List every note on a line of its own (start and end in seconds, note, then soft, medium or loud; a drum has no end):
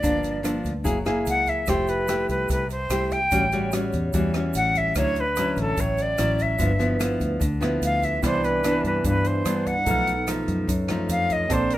0.00 0.61 G1 medium
0.00 0.83 G2 medium
0.00 0.41 F3 medium
0.00 0.41 A#3 medium
0.00 0.41 D4 medium
0.00 0.47 D5 medium
0.00 kick medium
0.00 closed hi-hat soft
0.00 shaker medium
0.23 closed hi-hat soft
0.23 shaker soft
0.43 0.72 F3 medium
0.43 0.72 A#3 medium
0.43 0.72 D4 medium
0.43 cross-stick medium
0.43 closed hi-hat soft
0.43 shaker medium
0.64 0.87 D2 medium
0.64 kick soft
0.64 closed hi-hat soft
0.64 shaker soft
0.84 1.24 F#1 medium
0.84 1.65 F#3 medium
0.84 0.97 A#3 medium
0.84 0.97 E4 soft
0.84 0.97 G#4 medium
0.84 kick medium
0.84 closed hi-hat soft
0.84 shaker medium
1.05 1.64 A#3 medium
1.05 1.64 E4 medium
1.05 1.65 G#4 medium
1.05 cross-stick medium
1.05 closed hi-hat soft
1.05 shaker soft
1.26 1.65 C#2 medium
1.26 1.51 F#5 medium
1.26 closed hi-hat soft
1.26 shaker medium
1.46 1.71 E5 medium
1.46 kick soft
1.46 closed hi-hat soft
1.46 shaker soft
1.66 2.25 F1 medium
1.66 2.48 F3 medium
1.66 2.06 A3 medium
1.66 2.06 E4 medium
1.66 2.06 G4 medium
1.66 1.91 C5 medium
1.66 kick medium
1.66 cross-stick medium
1.66 closed hi-hat soft
1.66 shaker medium
1.87 2.30 B4 medium
1.87 closed hi-hat soft
1.87 shaker soft
2.08 2.64 A3 medium
2.08 2.64 E4 medium
2.08 2.64 G4 medium
2.08 cross-stick medium
2.08 closed hi-hat soft
2.08 shaker medium
2.29 2.48 C2 medium
2.29 2.49 B4 medium
2.29 kick soft
2.29 closed hi-hat soft
2.29 shaker soft
2.48 2.88 C2 medium
2.48 3.29 C3 medium
2.48 2.70 B4 medium
2.48 kick medium
2.48 closed hi-hat soft
2.48 shaker medium
2.70 3.14 C5 medium
2.70 closed hi-hat soft
2.70 shaker soft
2.90 3.28 C2 medium
2.90 3.18 A3 medium
2.90 3.18 E4 soft
2.90 3.19 G4 medium
2.90 cross-stick medium
2.90 closed hi-hat soft
2.90 shaker medium
3.11 3.73 G5 medium
3.11 kick soft
3.11 closed hi-hat soft
3.11 shaker soft
3.31 3.89 A1 medium
3.31 4.11 A2 medium
3.31 3.44 G3 medium
3.31 3.44 C#4 medium
3.31 3.44 F#4 medium
3.31 kick medium
3.31 closed hi-hat soft
3.31 shaker medium
3.52 3.70 G3 medium
3.52 3.70 C#4 medium
3.52 3.70 F#4 medium
3.52 closed hi-hat soft
3.52 shaker soft
3.72 4.10 G3 medium
3.72 4.11 C#4 medium
3.72 4.11 F#4 medium
3.72 cross-stick medium
3.72 closed hi-hat soft
3.72 shaker medium
3.92 4.12 E2 medium
3.92 kick soft
3.92 closed hi-hat soft
3.92 shaker soft
4.13 4.52 E2 medium
4.13 4.94 E3 medium
4.13 4.31 G3 medium
4.13 4.31 C#4 medium
4.13 4.31 F#4 medium
4.13 kick medium
4.13 closed hi-hat soft
4.13 shaker medium
4.34 4.93 G3 medium
4.34 4.93 C#4 medium
4.34 4.93 F#4 medium
4.34 cross-stick medium
4.34 closed hi-hat soft
4.34 shaker soft
4.53 4.93 A1 medium
4.53 4.79 F#5 loud
4.53 closed hi-hat soft
4.53 shaker medium
4.74 4.97 E5 medium
4.74 kick soft
4.74 closed hi-hat soft
4.74 shaker soft
4.95 5.53 D2 medium
4.95 5.76 D3 medium
4.95 5.23 F#3 medium
4.95 5.23 C#4 medium
4.95 5.23 E4 medium
4.95 5.22 C#5 loud
4.95 kick medium
4.95 cross-stick medium
4.95 closed hi-hat soft
4.95 shaker medium
5.15 closed hi-hat soft
5.15 shaker soft
5.20 5.59 B4 medium
5.36 6.16 F#3 medium
5.36 6.16 C#4 medium
5.36 6.16 E4 medium
5.36 cross-stick medium
5.36 closed hi-hat soft
5.36 shaker medium
5.56 5.76 A1 medium
5.56 kick soft
5.56 closed hi-hat soft
5.56 shaker soft
5.61 5.82 A4 medium
5.77 6.16 A1 medium
5.77 6.58 A2 medium
5.77 6.03 C#5 medium
5.77 kick medium
5.77 closed hi-hat soft
5.77 shaker medium
5.97 closed hi-hat soft
5.97 shaker soft
6.02 6.44 D5 medium
6.18 6.57 A1 medium
6.18 6.58 F#3 medium
6.18 6.58 C#4 soft
6.18 6.58 E4 medium
6.18 cross-stick medium
6.18 closed hi-hat soft
6.18 shaker medium
6.38 7.02 E5 medium
6.38 kick soft
6.38 closed hi-hat soft
6.38 shaker soft
6.58 7.17 G1 medium
6.58 7.39 G2 medium
6.58 6.71 F3 medium
6.58 6.71 B3 soft
6.58 6.71 E4 medium
6.58 kick medium
6.58 closed hi-hat soft
6.58 shaker medium
6.79 6.97 F3 medium
6.79 6.97 B3 medium
6.79 6.97 E4 medium
6.79 closed hi-hat soft
6.79 shaker soft
6.99 7.40 F3 medium
6.99 7.41 B3 medium
6.99 7.41 E4 medium
6.99 cross-stick medium
6.99 closed hi-hat soft
6.99 shaker medium
7.20 7.40 D2 medium
7.20 kick soft
7.20 closed hi-hat soft
7.20 shaker soft
7.40 7.79 D2 medium
7.40 8.20 D3 medium
7.40 kick medium
7.40 closed hi-hat soft
7.40 shaker medium
7.61 8.19 F3 medium
7.61 8.20 B3 medium
7.61 8.20 E4 medium
7.61 cross-stick medium
7.61 closed hi-hat soft
7.61 shaker soft
7.82 8.20 D2 medium
7.82 8.06 F5 medium
7.82 closed hi-hat soft
7.82 shaker medium
8.02 8.24 E5 medium
8.02 kick soft
8.02 closed hi-hat soft
8.02 shaker soft
8.22 8.80 C2 medium
8.22 9.02 C3 medium
8.22 8.61 E3 medium
8.22 8.61 B3 soft
8.22 8.61 D4 medium
8.22 9.83 E4 soft
8.22 8.46 C5 medium
8.22 9.85 D5 medium
8.22 9.84 B5 soft
8.22 kick medium
8.22 cross-stick medium
8.22 closed hi-hat soft
8.22 shaker medium
8.44 8.85 B4 medium
8.44 closed hi-hat soft
8.44 shaker soft
8.64 9.42 E3 medium
8.64 9.43 B3 medium
8.64 9.43 D4 medium
8.64 cross-stick medium
8.64 closed hi-hat soft
8.64 shaker medium
8.84 9.03 G2 medium
8.84 9.04 B4 medium
8.84 kick soft
8.84 closed hi-hat soft
8.84 shaker soft
9.04 9.43 G2 medium
9.04 9.85 G2 medium
9.04 9.29 B4 medium
9.04 kick medium
9.04 closed hi-hat soft
9.04 shaker medium
9.24 9.69 C5 medium
9.24 closed hi-hat soft
9.24 shaker soft
9.45 9.84 G2 medium
9.45 9.73 E3 medium
9.45 9.73 B3 medium
9.45 9.74 D4 medium
9.45 cross-stick medium
9.45 closed hi-hat soft
9.45 shaker medium
9.66 10.28 F#5 loud
9.66 kick soft
9.66 closed hi-hat soft
9.66 shaker soft
9.85 10.44 B1 medium
9.85 10.66 B2 medium
9.85 10.13 F3 medium
9.85 10.13 A3 medium
9.85 11.46 D#4 medium
9.85 10.13 D#4 medium
9.85 11.47 A4 soft
9.85 11.48 B4 soft
9.85 kick medium
9.85 closed hi-hat soft
9.85 shaker medium
9.91 11.49 F6 medium
10.07 closed hi-hat soft
10.07 shaker soft
10.27 10.68 F3 medium
10.27 10.69 A3 medium
10.27 10.69 D#4 medium
10.27 cross-stick medium
10.27 closed hi-hat soft
10.27 shaker medium
10.48 10.67 F#2 medium
10.48 kick soft
10.48 closed hi-hat soft
10.48 shaker soft
10.67 11.48 F#2 medium
10.67 11.07 F#2 medium
10.67 kick medium
10.67 closed hi-hat soft
10.67 shaker medium
10.88 11.47 F3 medium
10.88 11.48 A3 medium
10.88 11.48 D#4 medium
10.88 cross-stick medium
10.88 closed hi-hat soft
10.88 shaker soft
11.09 11.47 F2 medium
11.09 11.34 F5 medium
11.09 closed hi-hat soft
11.09 shaker medium
11.30 11.55 D#5 medium
11.30 kick soft
11.30 closed hi-hat soft
11.30 shaker soft
11.49 11.78 A#1 medium
11.49 11.78 A#3 medium
11.49 11.78 C4 medium
11.49 11.78 D4 medium
11.49 11.78 A4 medium
11.49 11.78 C5 medium
11.49 11.78 A5 soft
11.49 kick medium
11.49 cross-stick medium
11.49 closed hi-hat soft
11.49 shaker medium
11.53 11.76 C5 medium
11.53 11.78 D5 medium
11.70 11.78 A#4 medium
11.70 closed hi-hat soft
11.70 shaker soft